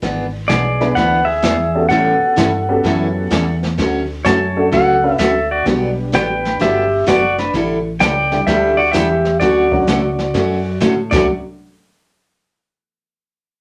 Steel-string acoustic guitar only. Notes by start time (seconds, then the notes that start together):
0.02 E3 B3 D4 G#4
0.49 E3 B3 D4 G#4
0.96 E3 B3 D4 G#4
1.42 E3 B3 D4 G#4
1.90 E3 G3 C#4 E4 A4
2.36 E3 G3 C#4 E4 A4
2.83 E3 G3 C#4 E4 A4
3.31 E3 G3 C#4 E4 A4
3.78 D3 F#3 A3 C#4 F#4
4.24 D3 F#3 A3 C#4 F#4
4.72 D3 F#3 A3 C#4 F#4
5.18 D3 F#3 A3 C#4 F#4
5.66 D3 F#3 B3 D4 G4
6.12 D3 F#3 B3 D4 G4
6.59 D3 F#3 B3 D4 G4
7.06 D3 F#3 B3 D4 G4
7.54 D3 G3 D4 E4 A4
8.00 D3 G3 D4 E4 A4
8.47 D3 G3 D4 E4 A4
8.93 D3 G3 D4 E4 A4
9.41 D3 F#3 A3 C#4 F#4
9.87 D3 F#3 A3 C#4 F#4
10.34 D3 F#3 A3 C#4 F#4
10.80 D3 F#3 A3 C#4 F#4
11.11 D3 F#3 A3 C#4 F#4